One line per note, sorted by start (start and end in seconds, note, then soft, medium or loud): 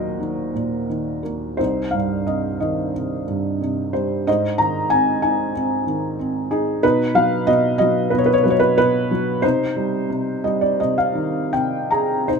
0.00 1.55 D#2 soft
0.00 0.51 A#2 soft
0.00 0.18 D#3 soft
0.00 1.21 F#3 soft
0.00 1.62 F#4 medium
0.00 1.21 A#4 medium
0.00 1.57 C5 medium
0.00 1.61 D#5 medium
0.19 0.88 D#3 soft
0.55 1.57 A#2 soft
0.90 1.57 D#3 soft
1.23 1.59 A#3 soft
1.23 1.60 A#4 soft
1.57 4.23 C2 soft
1.57 2.90 D#4 soft
1.57 1.94 C5 medium
1.91 3.24 G2 soft
1.91 2.24 F5 medium
2.27 2.93 C3 soft
2.27 2.59 D#5 medium
2.60 3.90 D#3 soft
2.60 2.92 D#5 soft
2.94 3.60 C3 soft
3.27 4.24 G2 soft
3.62 4.26 C3 soft
3.93 4.26 G3 soft
3.93 4.28 C5 medium
4.27 6.79 G#2 medium
4.27 5.51 C5 medium
4.27 4.57 D#5 medium
4.58 5.83 D#3 soft
4.58 4.91 A#5 medium
4.90 5.53 C4 medium
4.90 5.20 G#5 medium
5.22 6.47 D#4 soft
5.22 5.52 G#5 medium
5.54 6.18 C4 soft
5.87 6.80 D#3 soft
6.19 6.81 C4 soft
6.51 6.82 D#4 medium
6.51 6.84 G#4 medium
6.83 7.46 B2 medium
6.83 8.09 D#4 medium
6.83 7.13 B4 medium
7.15 7.79 F#3 soft
7.15 7.48 F5 medium
7.47 8.11 B2 medium
7.47 7.77 D#5 medium
7.78 8.44 F#3 medium
7.78 8.13 D#5 medium
8.10 8.76 B2 medium
8.10 8.19 B4 medium
8.18 8.27 C#5 medium
8.26 8.35 B4 medium
8.33 8.42 C#5 medium
8.44 9.10 F#3 medium
8.44 8.51 B4 medium
8.50 8.59 C#5 medium
8.60 8.76 B4 medium
8.78 9.41 B2 soft
8.78 9.39 B4 medium
9.11 9.43 F#3 medium
9.42 10.08 C3 medium
9.42 11.50 D#4 medium
9.42 11.50 C5 medium
9.76 10.43 G3 soft
10.10 10.79 C3 soft
10.44 11.88 G3 medium
10.44 10.60 D#5 medium
10.61 10.78 D5 medium
10.80 11.52 C3 medium
10.80 10.97 D#5 medium
10.98 11.50 F5 medium
11.15 12.24 D#3 soft
11.53 12.25 C3 medium
11.53 11.89 G5 medium
11.91 12.29 G#4 medium
11.91 12.25 A#5 medium
12.28 12.40 C3 soft
12.28 12.40 D#4 medium
12.28 12.40 C5 medium